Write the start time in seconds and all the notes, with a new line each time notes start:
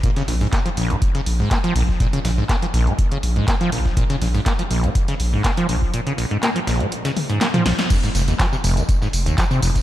0.03 A#2, kick, closed hi-hat
0.16 C#3, snare, closed hi-hat
0.28 A#1, snare, closed hi-hat, open hi-hat
0.41 G#2, closed hi-hat
0.53 A#3, kick, snare, clap, closed hi-hat
0.66 F3, closed hi-hat
0.77 A#1, closed hi-hat, open hi-hat
0.90 A#2, closed hi-hat
1.02 kick, closed hi-hat
1.15 C#3, snare, closed hi-hat
1.26 A#1, closed hi-hat, open hi-hat
1.39 G#2
1.51 A#3, kick, snare, clap, closed hi-hat
1.64 F3, closed hi-hat
1.76 A#1, closed hi-hat, open hi-hat
1.89 kick, snare
2.00 A#2, kick, snare, closed hi-hat
2.13 C#3, closed hi-hat
2.25 A#1, snare, closed hi-hat, open hi-hat
2.38 G#2
2.49 A#3, kick, snare, clap, closed hi-hat
2.62 F3, closed hi-hat
2.74 A#1, closed hi-hat, open hi-hat
2.87 A#2, closed hi-hat
2.99 kick, closed hi-hat
3.12 C#3, closed hi-hat
3.23 A#1, closed hi-hat, open hi-hat
3.36 G#2, closed hi-hat
3.48 A#3, kick, snare, clap, closed hi-hat
3.61 F3, closed hi-hat
3.72 A#1, closed hi-hat, open hi-hat
3.85 kick, snare
3.97 A#2, kick, closed hi-hat
4.10 C#3, snare, closed hi-hat
4.21 A#1, snare, closed hi-hat, open hi-hat
4.35 G#2, closed hi-hat
4.46 A#3, kick, snare, clap, closed hi-hat
4.59 F3, closed hi-hat
4.71 A#1, closed hi-hat, open hi-hat
4.84 A#2, closed hi-hat
4.95 kick, closed hi-hat
5.08 C#3, snare, closed hi-hat
5.20 A#1, closed hi-hat, open hi-hat
5.33 G#2
5.44 A#3, kick, snare, clap, closed hi-hat
5.57 F3, closed hi-hat
5.69 A#1, closed hi-hat, open hi-hat
5.82 kick
5.94 A#2, closed hi-hat
6.07 C#3, closed hi-hat
6.18 A#1, closed hi-hat, open hi-hat
6.31 G#2, closed hi-hat
6.43 A#3, snare, clap, closed hi-hat
6.56 F3, closed hi-hat
6.67 A#1, snare, closed hi-hat, open hi-hat
6.80 A#2, closed hi-hat
6.92 closed hi-hat
7.05 C#3, snare, closed hi-hat
7.17 open hi-hat, high tom
7.29 G#2, closed hi-hat
7.41 A#3, snare, clap, closed hi-hat
7.54 F3, closed hi-hat, mid tom
7.66 A#1, snare, closed hi-hat, open hi-hat
7.79 snare, closed hi-hat
7.90 F2, kick, closed hi-hat, crash, tambourine
8.03 G#2, snare, closed hi-hat, tambourine
8.15 F1, snare, closed hi-hat, open hi-hat, tambourine
8.28 D#2, closed hi-hat, tambourine
8.39 F3, finger snap, kick, snare, clap, closed hi-hat, tambourine
8.53 C3, tambourine
8.64 F1, closed hi-hat, open hi-hat, tambourine
8.77 F2, closed hi-hat, tambourine
8.89 kick, closed hi-hat, tambourine
9.02 G#2, snare, tambourine
9.13 F1, closed hi-hat, open hi-hat, tambourine
9.26 D#2, closed hi-hat, tambourine
9.38 F3, kick, snare, clap, closed hi-hat, tambourine
9.51 C3, closed hi-hat, tambourine
9.62 F1, closed hi-hat, open hi-hat, tambourine
9.75 kick, snare, closed hi-hat, tambourine